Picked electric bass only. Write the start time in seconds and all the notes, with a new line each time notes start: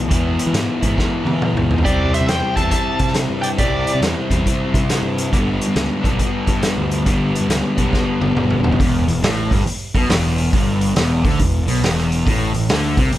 Already playing: B1
0.11 E2
0.47 E3
0.53 G#2
0.83 G#2
1.25 E3
1.54 C#2
1.86 C2
2.21 C3
2.28 E2
2.57 E2
3.00 C3
3.29 G2
3.59 C2
3.95 C3
4.01 E2
4.30 E2
4.74 C3
5.02 G2
5.33 G1
5.68 G2
5.76 C#2
6.04 B1
6.48 G2
6.77 D2
7.06 G1
7.41 G2
7.49 C#2
7.78 B1
8.20 G1
8.35 F#1
8.63 E1
8.80 E1
9.07 E1
9.22 A1
9.52 G1
9.66 muted picked electric bass stroke
9.95 B1
10.08 E1
10.53 G1
10.96 E1
11.24 D2
11.40 E1
11.67 B1
11.82 E1
12.27 A1
12.54 A1
12.70 D2
12.98 C2
13.13 muted picked electric bass stroke